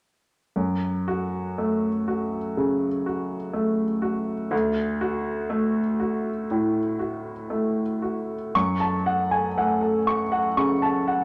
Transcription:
0.56 F#2
1.08 F#4
1.58 A3
2.08 F#4
2.57 C#3
3.06 F#4
3.53 A3
4.02 F#4
4.51 D2
5.01 F#4
5.50 A3
6.00 F#4
6.51 A2
6.99 F#4
7.50 A3
8.02 F#4
8.55 F#2 C#6
8.80 A5
9.06 F#5
9.31 G#5
9.57 A3 F#5
9.81 A4
10.07 C#6
10.32 F#5
10.57 C#3 C#6
10.82 A5
11.08 F#5

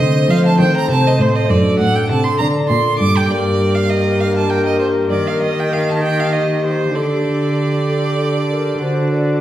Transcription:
Already playing: A3 C4 C5 D#5
0.00 D3
0.28 F3 F5
0.46 A5
0.59 D#3 G5
0.77 A#5
0.89 C3 A5
1.07 D#5
1.19 A2 C5
1.35 D#5
1.47 F#2 A3 D4 A4 D5
1.52 F#2
1.79 A2 F#5
1.95 G5
2.10 C3 A5
2.24 C6
2.38 D3 D5 A#5
2.69 A#2 C6
2.99 G2 D6
3.17 G5
3.26 A#3 D4 G4
3.30 G2 A#4 D5
3.75 F5
3.90 D#5
4.20 F5
4.37 A5
4.50 G5
4.66 D#5
4.79 C5
5.07 D#3 A#3 G4 D5
5.12 D#3
5.27 F5
5.42 D#5
5.60 G5
5.73 F5
5.90 A5
6.01 G4 G5
6.20 F5
6.33 D#5
6.64 C5
6.91 D3 D4 G4 A4 D5
6.96 D3
7.89 A4
8.50 A#4
8.78 D4 F#4 A4 C5
8.82 D3
9.13 D5

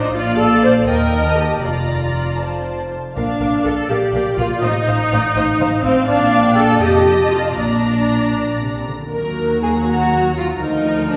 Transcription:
Already playing: A1 A2 C5 D#5
0.07 D#4
0.15 A#1 A#2 F4 D5 F5
0.39 A4
0.63 C5
0.88 D#2 A#4 D#5 G5
1.26 A5
1.38 G4
1.63 F1 F2 F4 D5 A#5
2.42 C5 A5
3.15 A#1 A#2 D4 A#4 F5
3.40 A#1 A#2 A#4 F5
3.65 A#1 A#2 A4 A#4 F5
3.90 A#1 A#2 G4 A#4 D5 F5
4.13 A#1 A#2 A#4 F5
4.38 A#1 A#2 F4 A#4 F5
4.62 A1 A2 D#4 C5 D#5 F5
4.87 A1 A2 C5 F5
5.12 A1 A2 C5 D5 F5
5.36 A1 A2 C5 D#5 F5
5.60 A1 A2 C5 F5
5.84 A1 A2 C4 C5 F5
6.07 A#1 A#2 D4 D5 F5
6.44 G5
6.57 A4
6.81 F1 F2 G4 D#5 A5
7.33 F4
7.57 A#1 A#2 D4 D5 A#5
8.35 A#2
8.61 C3
8.88 D3
9.12 D#2 F#3 F#4 A#4 A#5
9.63 G#4
9.89 F#4
10.38 F4
10.60 D2 F3 D#4 A#4
11.11 D4

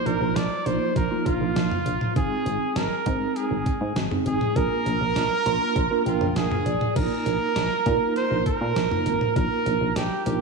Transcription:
Already playing: F3 A#3 D#4 F4
0.06 A#1 A#4, closed hi-hat
0.21 A#1
0.36 A#1 D5, snare, closed hi-hat
0.66 A#1 F3 A#3 D#4 F4 C5, closed hi-hat
0.96 A#1 A#4, kick, closed hi-hat
1.11 F3 A#3 D#4 F4
1.26 A#1 F4, kick, closed hi-hat
1.41 A#1
1.56 A#1, snare, closed hi-hat
1.72 mid tom
1.86 A#1, closed hi-hat
2.01 mid tom
2.16 G#1 G#3 C4 D#4 G#4, kick, closed hi-hat
2.46 G#1, closed hi-hat
2.76 G#1 A#4, snare, closed hi-hat
3.06 G#2 G#3 C4 D#4 G#4, kick, closed hi-hat
3.36 G#4, closed hi-hat
3.51 G#1
3.66 kick, closed hi-hat
3.81 G#2
3.96 G#1, snare, closed hi-hat
4.11 G#3 C4 D#4 G#4, mid tom
4.26 G#1 G#4, closed hi-hat
4.41 mid tom
4.56 A#1 A#3 D4 F4 A#4, kick, closed hi-hat
4.86 A#1, closed hi-hat
5.01 A#1
5.16 A#1, snare, closed hi-hat
5.46 A#1 A#3 D4 F4 A#4 C6, closed hi-hat
5.76 A#1 A#5, kick, closed hi-hat
5.91 A#3 D4 F4 A#4
6.06 A#1 F4 G5, closed hi-hat
6.21 A#1, mid tom
6.36 A#1 G#4 F5, snare, closed hi-hat
6.52 mid tom
6.66 A#1 D5, closed hi-hat
6.81 mid tom
6.96 A#1 A#3 D#4 F4 A#4, kick, closed hi-hat, crash
7.26 A#1, closed hi-hat
7.56 A#1, snare, closed hi-hat
7.86 A#2 A#3 D#4 F4 A#4, kick, closed hi-hat
8.16 C5, closed hi-hat
8.31 A#1
8.46 A#4, kick, closed hi-hat
8.61 A#2
8.76 A#1, snare, closed hi-hat
8.91 A#3 D#4 F4 A#4, mid tom
9.06 G#1, closed hi-hat
9.21 mid tom
9.36 A#1 A#3 D#4 F4 A#4, kick, closed hi-hat
9.66 A#1, closed hi-hat
9.81 A#1
9.96 A#1 G4, snare, closed hi-hat
10.26 A#1 A#3 D#4 F4 G4 A#4, closed hi-hat

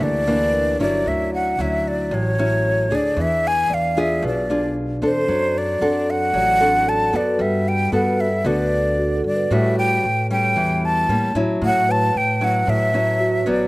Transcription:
Already playing: E3 A#3 D4 G4 A4 C#6
0.00 D2 D3 D5
0.27 E3 A#3 D4
0.53 A#4
0.79 G1 F#3 C#4 E4 D5
1.06 D2 D3 E5
1.34 F#5
1.58 D2 F#3 C#4 E4 E5
1.88 D5
2.11 A1 A2 C#5
2.38 F#3 C#4 E4
2.90 D2 D4 G#4
2.95 D5
3.17 E2 E3
3.21 E5
3.47 G#5
3.70 E2 D5 F5
3.97 D4 F4 G#4 E5
4.22 B1 B2
4.27 D5
4.50 D4 F4 G#4
5.02 E2 C4 D4 A4 C5
5.28 F#2 F#3
5.58 D5
5.81 F#2 C4 D4 A4 F#5
6.10 F#5
6.34 A1 F#3 D5
6.53 F#5
6.60 C4 D4 A4
6.88 A4 A5
7.13 F#2 B3 F#4 A4 D5
7.39 G2 G3 E5
7.68 G5
7.92 G2 B3 F#4 A4 F#5
8.20 E5
8.44 D2 D3 B3 F#4 A4 D5
8.99 F#4
9.18 A4
9.24 G2 D5
9.35 B4
9.50 A2 G3 C#4 F#4 E5
9.78 G5
10.04 A2
10.31 G3 C#4 G5
10.56 E2 E3
10.85 A5
11.09 A2 G3 A#3 C#4
11.35 A2 F#3 C#4 E4
11.61 A2 F#5
11.89 B4 A5
12.14 A2 G5
12.41 F#3 C#4 E4 F#5
12.67 A2 E5
12.93 F#3 C#4 E4
13.20 F#4
13.46 A1 F#3 B3 C#4 D5

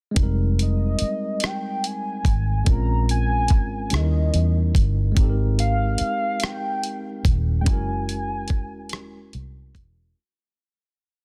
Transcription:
0.11 G#3 C4
0.16 F1 G3 D#4, kick, closed hi-hat
0.23 A#4
0.59 D#5, closed hi-hat
0.99 muted fingered electric bass stroke, closed hi-hat
1.40 cross-stick, closed hi-hat
1.45 G5
1.84 G#5, closed hi-hat
2.25 G#1, kick, closed hi-hat
2.64 A#1 G#3 C4 C#4, kick, closed hi-hat
2.69 F4 A#4 A#5
3.09 G#5, closed hi-hat
3.48 G#1, kick, closed hi-hat
3.89 D#2 G3 C#4 D#4, closed hi-hat
3.94 E4 A4 D#5, cross-stick
4.01 A#4
4.34 E2, closed hi-hat
4.75 G1, kick, closed hi-hat
5.11 G#3 C4
5.17 G#1 D#4 G4, kick, closed hi-hat
5.23 A4
5.30 A#4
5.59 F5, closed hi-hat
5.98 muted fingered electric bass stroke, closed hi-hat
6.40 G5, cross-stick, closed hi-hat
6.83 closed hi-hat
7.25 D#1, kick, closed hi-hat
7.61 G#3 C#4 G5
7.66 F#1 E4 F#4 G#5, kick, closed hi-hat
7.73 A#4
8.09 closed hi-hat
8.48 E1, kick, closed hi-hat
8.89 cross-stick, closed hi-hat
9.33 C2, closed hi-hat
9.75 E1, kick, closed hi-hat

